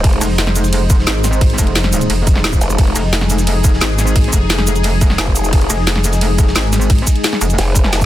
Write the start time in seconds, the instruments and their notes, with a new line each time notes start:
Already playing: analog synth pad G#3 D#4 C5
0.04 wobble bass F1, kick, closed hi-hat, ride
0.13 closed hi-hat
0.21 wobble bass F1, closed hi-hat, open hi-hat, shaker
0.38 snare, closed hi-hat, ride
0.47 snare
0.56 closed hi-hat, shaker
0.64 snare, closed hi-hat, shaker
0.73 closed hi-hat, ride
0.90 kick, closed hi-hat, shaker
0.99 snare
1.07 wobble bass G#1, snare, closed hi-hat, ride
1.24 snare, closed hi-hat, shaker
1.33 shaker
1.41 kick, closed hi-hat, ride
1.50 closed hi-hat
1.58 wobble bass F1, kick, closed hi-hat, shaker
1.67 closed hi-hat
1.75 snare, closed hi-hat, ride
1.84 snare
1.93 closed hi-hat, shaker
2.01 closed hi-hat, shaker
2.10 wobble bass F1, closed hi-hat, ride
2.27 kick, closed hi-hat, shaker
2.36 snare
2.44 snare, closed hi-hat, ride
2.53 kick, shaker
2.61 wobble bass F1, closed hi-hat, shaker
2.69 closed hi-hat, shaker
2.78 wobble bass F1, analog synth pad G#4, kick, closed hi-hat, ride
2.87 closed hi-hat
2.96 wobble bass F1, closed hi-hat, open hi-hat, shaker
3.13 snare, closed hi-hat, ride
3.21 snare
3.30 closed hi-hat, shaker
3.38 snare, closed hi-hat, shaker
3.47 closed hi-hat, ride
3.64 kick, closed hi-hat, shaker
3.73 snare
3.81 wobble bass G#1, snare, closed hi-hat, ride
3.99 snare, closed hi-hat, shaker
4.07 shaker
4.16 kick, closed hi-hat, ride
4.24 closed hi-hat
4.33 wobble bass F1, kick, closed hi-hat, shaker
4.49 snare, closed hi-hat, ride
4.58 snare
4.67 closed hi-hat, shaker
4.76 closed hi-hat, shaker
4.83 closed hi-hat, ride
5.01 kick, closed hi-hat, shaker
5.10 snare
5.18 wobble bass F1, snare, closed hi-hat, ride
5.27 kick
5.36 closed hi-hat, shaker
5.44 closed hi-hat, shaker
5.53 wobble bass F1, kick, closed hi-hat, ride
5.61 closed hi-hat
5.70 wobble bass F1, closed hi-hat, open hi-hat, shaker
5.87 snare, closed hi-hat, ride
5.96 snare
6.04 closed hi-hat, shaker
6.13 snare, closed hi-hat, shaker
6.21 closed hi-hat, ride
6.38 kick, closed hi-hat, shaker
6.47 snare
6.55 wobble bass G#1, snare, closed hi-hat, ride
6.73 snare, closed hi-hat, shaker
6.81 shaker
6.90 kick, closed hi-hat, ride
6.98 closed hi-hat
7.07 kick, closed hi-hat, shaker
7.16 closed hi-hat
7.24 snare, closed hi-hat, ride
7.33 snare
7.41 wobble bass F1, closed hi-hat, shaker
7.50 closed hi-hat, shaker
7.58 wobble bass F1, snare, closed hi-hat, ride
7.75 kick, closed hi-hat, shaker
7.84 snare
7.92 snare, closed hi-hat, ride
8.01 kick, shaker